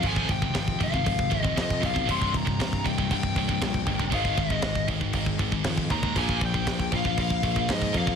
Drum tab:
CC |x-x-x-x-x-x-x-x-|x-x-x-x-x-x-x-x-|x-x-x-x-x-x-x-x-|x-x-x-x-x-x-x-x-|
SD |----o-------o---|----o-------o---|----o-------o---|----o-------o---|
BD |oooooooooooooooo|oooooooooooooooo|oooooooooooooooo|oooooooooooooooo|